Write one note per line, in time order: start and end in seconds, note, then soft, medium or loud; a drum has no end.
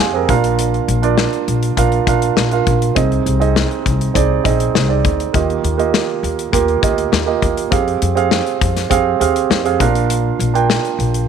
0.00 0.23 F2 medium
0.00 0.14 C4 medium
0.00 0.14 G4 medium
0.00 0.15 G#4 medium
0.00 0.30 C5 medium
0.00 0.31 D5 medium
0.00 0.30 D#5 medium
0.00 0.30 F5 medium
0.00 0.27 G#5 medium
0.14 0.29 C4 medium
0.14 0.29 G4 medium
0.14 0.29 G#4 medium
0.14 0.28 A#4 medium
0.28 0.78 A#1 medium
0.28 1.14 A#2 medium
0.28 0.88 D4 medium
0.28 0.88 F4 medium
0.28 0.89 A#4 medium
0.28 0.89 F5 medium
0.28 0.57 A#5 medium
0.28 kick medium
0.28 closed hi-hat medium
0.44 closed hi-hat soft
0.59 closed hi-hat medium
0.74 closed hi-hat soft
0.88 1.25 A#1 medium
0.88 closed hi-hat medium
1.02 1.55 D4 medium
1.02 1.55 F4 medium
1.02 1.56 A#4 medium
1.02 1.56 D5 medium
1.02 closed hi-hat soft
1.18 snare medium
1.33 closed hi-hat soft
1.48 1.72 A#1 medium
1.48 closed hi-hat medium
1.63 closed hi-hat soft
1.77 2.02 A#1 medium
1.77 1.98 D4 medium
1.77 1.98 F4 medium
1.77 1.99 A#4 medium
1.77 1.99 F5 medium
1.77 kick medium
1.77 closed hi-hat medium
1.92 closed hi-hat soft
2.07 2.32 A#1 medium
2.07 2.38 D4 medium
2.07 2.39 F4 medium
2.07 2.39 A#4 medium
2.07 2.39 F5 medium
2.07 kick medium
2.07 closed hi-hat medium
2.22 closed hi-hat soft
2.37 2.61 A#1 medium
2.37 snare medium
2.51 2.83 D4 medium
2.51 2.83 F4 medium
2.51 2.84 A#4 medium
2.51 2.84 F5 medium
2.51 closed hi-hat soft
2.67 2.91 A#1 medium
2.67 kick medium
2.67 closed hi-hat soft
2.82 closed hi-hat soft
2.95 3.21 C2 medium
2.95 3.81 C3 medium
2.95 3.27 C4 medium
2.95 3.27 D#4 medium
2.95 3.28 G#4 medium
2.95 3.28 D#5 medium
2.95 kick medium
2.95 closed hi-hat medium
3.12 closed hi-hat soft
3.26 3.63 C2 medium
3.26 closed hi-hat medium
3.40 3.93 C4 medium
3.40 3.93 D#4 medium
3.40 3.93 G#4 medium
3.40 3.93 D#5 medium
3.40 closed hi-hat soft
3.56 snare medium
3.71 closed hi-hat soft
3.86 4.10 C2 medium
3.86 kick medium
3.86 closed hi-hat medium
4.01 closed hi-hat soft
4.14 4.40 C2 medium
4.14 4.36 C4 medium
4.14 4.36 D#4 medium
4.14 4.36 G#4 medium
4.14 4.36 D5 medium
4.14 kick medium
4.14 closed hi-hat medium
4.44 4.69 A#1 medium
4.44 4.76 C4 medium
4.44 4.76 D#4 medium
4.44 4.76 G#4 medium
4.44 4.77 D#5 medium
4.44 kick medium
4.44 closed hi-hat medium
4.60 closed hi-hat soft
4.75 4.99 C2 medium
4.75 snare medium
4.88 5.20 C4 medium
4.88 5.21 D#4 medium
4.88 5.21 G#4 medium
4.88 5.21 D5 medium
5.05 5.29 D2 medium
5.05 kick medium
5.05 closed hi-hat soft
5.20 closed hi-hat soft
5.33 5.59 D#2 medium
5.33 6.19 D#3 medium
5.33 5.65 A#3 medium
5.33 5.65 F4 medium
5.33 5.66 G4 medium
5.33 5.66 D#5 medium
5.33 kick medium
5.33 closed hi-hat medium
5.50 closed hi-hat soft
5.64 6.00 D#2 medium
5.64 closed hi-hat medium
5.78 6.30 A#3 medium
5.78 6.31 F4 medium
5.78 6.31 G4 medium
5.78 6.31 D#5 medium
5.78 closed hi-hat soft
5.94 snare medium
6.23 6.48 D#2 medium
6.23 closed hi-hat medium
6.39 closed hi-hat soft
6.52 6.78 D#2 medium
6.52 6.74 A#3 medium
6.52 6.74 F4 medium
6.52 6.74 G4 medium
6.52 6.75 A#4 medium
6.52 kick medium
6.52 closed hi-hat medium
6.68 closed hi-hat soft
6.82 7.07 D2 medium
6.82 7.14 A#3 medium
6.82 7.14 F4 medium
6.82 7.14 G4 medium
6.82 7.15 D#5 medium
6.82 kick medium
6.82 closed hi-hat medium
6.98 closed hi-hat soft
7.12 7.37 D#2 medium
7.12 snare medium
7.26 7.58 A#3 medium
7.26 7.58 F4 medium
7.26 7.59 G4 medium
7.26 7.59 D#5 medium
7.42 7.67 D#2 medium
7.42 kick medium
7.42 closed hi-hat medium
7.57 closed hi-hat soft
7.71 7.96 F2 medium
7.71 8.03 C4 medium
7.71 8.03 G4 medium
7.71 8.03 G#4 medium
7.71 8.04 F5 medium
7.71 kick medium
7.71 closed hi-hat medium
7.88 closed hi-hat soft
8.02 8.39 F2 medium
8.02 closed hi-hat medium
8.15 8.68 C4 medium
8.15 8.68 G4 medium
8.15 8.69 G#4 medium
8.15 8.69 F5 medium
8.15 closed hi-hat soft
8.31 snare medium
8.46 closed hi-hat soft
8.61 8.86 F2 medium
8.61 kick medium
8.61 closed hi-hat medium
8.76 snare soft
8.76 closed hi-hat soft
8.90 9.15 F2 medium
8.90 9.11 C4 medium
8.90 9.12 G4 medium
8.90 9.12 G#4 medium
8.90 9.12 F5 medium
8.90 kick medium
8.90 closed hi-hat medium
9.20 9.45 D#2 medium
9.20 9.52 C4 medium
9.20 9.52 G4 medium
9.20 9.52 G#4 medium
9.20 9.53 F5 medium
9.20 closed hi-hat medium
9.36 closed hi-hat soft
9.50 9.75 F2 medium
9.50 snare medium
9.65 9.80 C4 medium
9.65 9.80 G4 medium
9.65 9.80 G#4 medium
9.65 9.80 F5 medium
9.65 closed hi-hat soft
9.80 10.29 A#1 medium
9.80 10.66 A#2 medium
9.80 10.39 D4 medium
9.80 10.40 F4 medium
9.80 10.40 A#4 medium
9.80 10.40 F5 medium
9.80 kick medium
9.80 closed hi-hat medium
9.95 closed hi-hat soft
10.10 closed hi-hat medium
10.39 10.76 A#1 medium
10.39 closed hi-hat medium
10.54 11.06 D4 medium
10.54 11.07 F4 medium
10.54 11.07 A#4 medium
10.54 11.07 G5 medium
10.54 closed hi-hat soft
10.70 snare medium
10.85 closed hi-hat soft
10.99 11.23 A#1 medium
10.99 closed hi-hat medium
11.14 closed hi-hat soft